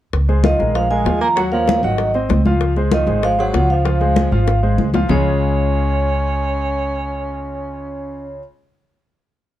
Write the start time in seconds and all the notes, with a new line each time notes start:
0.13 C#2, high bongo, high conga
0.29 G#3 G#4 C5, high bongo, high conga
0.44 D#3 F3 F4 D#5 F5, high bongo, high conga
0.59 A#1 G#3 G#4 A#4, high bongo, high conga
0.74 F3 F5, high bongo, high conga
0.90 G#3 G#4 A#4 G#5, high bongo, high conga
1.05 D#2 F3 F4 F5, high bongo, low bongo, high conga
1.21 A#3 A#5, high conga
1.36 F#3 F#4 F#5, high bongo, high conga
1.52 F3 A#3 A#4 C#5 F5, high bongo, high conga
1.68 high bongo, high conga
1.83 G#1 D#3 F#3 F#4 D#5 F#5, high conga
1.98 high bongo, high conga
2.14 C4 C5 D#5, high bongo, high conga
2.29 C#2, high bongo, low bongo, high conga
2.45 F3 F4 F5, high bongo, high conga
2.61 high bongo, high conga
2.76 G#3 G#4 C5, high bongo, high conga
2.91 D#3 F3 F4 D#5 F5, high bongo, high conga
3.07 G#1 G#3 G#4 C5, high bongo, high conga
3.23 F3 F5, high bongo, high conga
3.38 F#3 G#3 G#4 C5 F#5, high bongo, high conga
3.53 C#2 F3 F4 F5, high bongo, low bongo, high conga
3.70 F3 F5, high conga
3.85 F3 F4 F5, high bongo, high conga
4.01 G#3 G#4 C5, high bongo, high conga
4.16 high bongo, high conga
4.32 G#1 F3 F4 F5, high conga
4.48 high bongo, high conga
4.63 G#3 G#4 C5, high conga
4.78 C#2, high conga
4.94 F3 F4 F5, low bongo, high conga
5.09 C#2 C#3 G#3 C#4 F4 G#4 C#5, low bongo, low conga